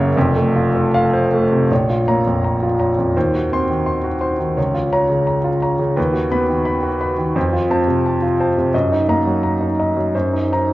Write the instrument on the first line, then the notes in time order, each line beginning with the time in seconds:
grand piano
Already playing: F#1 F#2 C#3 A#3 C#4 A#4 C#5
0.15 F1 F2
0.36 A3
0.55 F4
0.75 A4
0.94 F5
1.13 C5
1.34 A3
1.52 C3
1.71 A#1 C#5
1.90 F4
2.08 A#3 C#5 A#5
2.27 F2
2.44 A#5
2.63 F4
2.79 C#5 A#5
2.98 F2
3.16 D#2 C5
3.35 F#4
3.52 C4 C5 C6
3.70 D#3
3.86 C6
4.04 F#4
4.21 C5 C6
4.39 D#3
4.57 C#2 C#5
4.74 F4
4.92 C#4 C#5 A#5
5.09 C#3
5.27 A#5
5.44 F4
5.62 C#5 A#5
5.79 C#3
5.96 D#2 B4
6.13 F#4
6.31 B3 B4 B5
6.49 D#3
6.65 B5
6.83 F#4
7.01 B4 B5
7.18 D#3
7.36 F2 C5
7.53 F4
7.70 C4 C5 A5
7.87 C3
8.06 A5
8.22 F4
8.40 C5 A5
8.58 C3
8.74 F#2 D#5
8.92 D#4
9.09 A#3 D#5 A#5
9.27 F#3
9.43 A#5
9.60 D#4
9.79 D#5 A#5
9.97 F#3
10.15 F#2 C5
10.33 D#4
10.52 D#4 C5 A#5